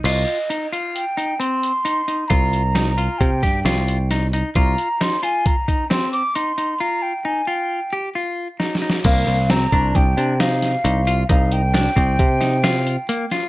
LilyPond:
<<
  \new Staff \with { instrumentName = "Flute" } { \time 5/4 \key c \minor \tempo 4 = 133 ees''4. r8 g''4 c'''2 | bes''2 g''2 r4 | bes''4 c'''8 aes''8 bes''4 c'''8 d'''8 c'''4 | bes''8 g''8 aes''8 g''4 r2 r8 |
f''4 bes''4 g''4 f''2 | f''8 g''1 r8 | }
  \new Staff \with { instrumentName = "Clean electric guitar" } { \time 5/4 \key c \minor f'4 ees'8 f'4 ees'8 c'4 ees'8 ees'8 | f'4 ees'8 f'4 g'8 f'4 ees'8 ees'8 | f'4 ees'8 f'4 ees'8 c'4 ees'8 ees'8 | f'4 ees'8 f'4 g'8 f'4 ees'8 ees'8 |
bes4 c'8 d'4 d'8 ees'4 ees'8 f'8 | ees'4 d'8 c'4 ees'8 f'4 bes8 f'8 | }
  \new Staff \with { instrumentName = "Picked electric bass" } { \clef bass \time 5/4 \key c \minor c,8 r1 r8 | c,2 c8 g,8 c,2 | c,8 r1 r8 | r1 r4 |
c,8 c,4 c,8 c,8 c4. c,4 | c,4. c,8 c2 r4 | }
  \new DrumStaff \with { instrumentName = "Drums" } \drummode { \time 5/4 <cymc hh>8 hh8 hh8 hh8 hh8 hh8 hh8 hh8 hh8 hh8 | <hh bd>8 hh8 <hh sn>8 hh8 <hh bd>8 <hh bd sn>8 <hh sn>8 hh8 <hh sn>8 hh8 | <hh bd>8 hh8 <hh sn>8 hh8 <hh bd>8 <hh bd>8 <hh sn>8 hh8 hh8 hh8 | r4 r4 r4 r4 \tuplet 3/2 { sn8 sn8 sn8 } |
<cymc hh bd>8 hh8 <hh sn>8 <hh bd>8 <hh bd>8 hh8 <hh sn>8 <hh sn>8 hh8 hh8 | <hh bd>8 hh8 <hh sn>8 <hh bd>8 <hh bd>8 <hh sn>8 <hh sn>8 hh8 hh8 <hh sn>8 | }
>>